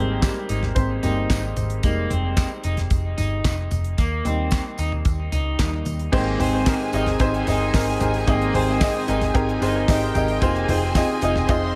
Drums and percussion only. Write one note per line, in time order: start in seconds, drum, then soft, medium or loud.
0.22 kick loud
0.22 snare loud
0.22 clap medium
0.22 closed hi-hat medium
0.22 tambourine medium
0.49 closed hi-hat medium
0.49 tambourine soft
0.63 snare soft
0.63 floor tom medium
0.76 kick loud
0.76 closed hi-hat medium
0.76 tambourine soft
1.03 closed hi-hat medium
1.03 floor tom medium
1.03 tambourine medium
1.30 kick loud
1.30 snare loud
1.30 clap medium
1.30 closed hi-hat loud
1.30 tambourine medium
1.56 closed hi-hat medium
1.56 floor tom medium
1.56 tambourine soft
1.70 closed hi-hat medium
1.83 kick loud
1.83 closed hi-hat medium
1.83 tambourine soft
2.10 closed hi-hat medium
2.10 floor tom medium
2.37 kick loud
2.37 snare loud
2.37 clap medium
2.37 closed hi-hat medium
2.37 tambourine medium
2.64 closed hi-hat medium
2.64 tambourine medium
2.77 snare soft
2.77 closed hi-hat soft
2.77 floor tom medium
2.90 kick loud
2.90 closed hi-hat medium
2.90 tambourine soft
3.18 closed hi-hat medium
3.18 floor tom medium
3.18 tambourine medium
3.44 kick loud
3.44 snare loud
3.44 clap medium
3.44 closed hi-hat medium
3.44 tambourine medium
3.71 closed hi-hat medium
3.71 floor tom medium
3.71 tambourine soft
3.84 closed hi-hat soft
3.98 kick medium
3.98 closed hi-hat medium
3.98 tambourine soft
4.25 closed hi-hat medium
4.25 floor tom medium
4.25 tambourine soft
4.51 kick loud
4.51 snare loud
4.51 clap medium
4.51 closed hi-hat medium
4.51 tambourine medium
4.78 closed hi-hat medium
4.78 tambourine medium
4.92 floor tom medium
5.05 kick loud
5.05 closed hi-hat medium
5.05 tambourine soft
5.32 closed hi-hat medium
5.32 floor tom medium
5.32 tambourine medium
5.59 kick loud
5.59 snare loud
5.59 clap medium
5.59 closed hi-hat medium
5.59 tambourine medium
5.85 closed hi-hat medium
5.85 floor tom medium
5.85 tambourine soft
5.99 closed hi-hat soft
6.13 kick loud
6.13 crash loud
6.13 tambourine medium
6.40 floor tom medium
6.40 hi-hat pedal medium
6.40 open hi-hat medium
6.40 tambourine soft
6.66 kick loud
6.66 snare loud
6.66 clap medium
6.66 hi-hat pedal medium
6.66 open hi-hat medium
6.66 tambourine medium
6.93 hi-hat pedal medium
6.93 open hi-hat medium
6.93 tambourine medium
7.06 snare soft
7.06 floor tom medium
7.06 open hi-hat soft
7.20 kick loud
7.20 hi-hat pedal medium
7.20 open hi-hat medium
7.20 tambourine soft
7.33 hi-hat pedal medium
7.47 floor tom medium
7.47 hi-hat pedal medium
7.47 open hi-hat medium
7.47 tambourine medium
7.74 kick loud
7.74 snare loud
7.74 clap medium
7.74 hi-hat pedal medium
7.74 open hi-hat loud
7.74 tambourine medium
8.00 floor tom medium
8.00 hi-hat pedal medium
8.00 open hi-hat medium
8.00 tambourine medium
8.14 open hi-hat medium
8.28 kick loud
8.28 hi-hat pedal medium
8.28 open hi-hat medium
8.28 tambourine medium
8.41 hi-hat pedal medium
8.55 floor tom medium
8.55 hi-hat pedal medium
8.55 open hi-hat medium
8.81 kick loud
8.81 snare loud
8.81 clap medium
8.81 hi-hat pedal medium
8.81 open hi-hat medium
8.81 tambourine medium
9.07 hi-hat pedal medium
9.07 open hi-hat medium
9.07 tambourine medium
9.21 snare soft
9.21 floor tom medium
9.21 open hi-hat medium
9.35 kick loud
9.35 hi-hat pedal medium
9.35 open hi-hat medium
9.48 hi-hat pedal medium
9.62 hi-hat pedal medium
9.62 open hi-hat medium
9.62 tambourine medium
9.88 kick loud
9.88 snare loud
9.88 clap medium
9.88 hi-hat pedal medium
9.88 open hi-hat loud
9.88 tambourine medium
10.15 floor tom medium
10.15 hi-hat pedal medium
10.15 open hi-hat medium
10.15 tambourine soft
10.28 open hi-hat medium
10.42 kick loud
10.42 hi-hat pedal medium
10.42 open hi-hat medium
10.42 tambourine medium
10.55 hi-hat pedal medium
10.68 floor tom medium
10.68 hi-hat pedal medium
10.68 open hi-hat medium
10.95 kick loud
10.95 snare loud
10.95 clap loud
10.95 hi-hat pedal medium
10.95 open hi-hat medium
10.95 tambourine medium
11.21 hi-hat pedal medium
11.21 open hi-hat loud
11.21 tambourine medium
11.36 snare soft
11.36 floor tom medium
11.49 kick loud
11.49 hi-hat pedal medium
11.49 open hi-hat medium
11.49 tambourine soft